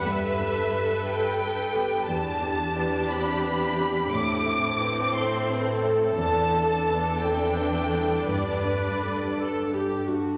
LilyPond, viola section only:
\new Staff \with { instrumentName = "Viola section" } { \time 6/8 \key e \minor \tempo 4. = 58 << { a'2. | g'2. | a'2.~ | a'2. |
b'4. a'8 g'8 fis'8 | } \\ { b'2. | d'2. | c'2. | d'2.~ |
d'4. r4. | } >> }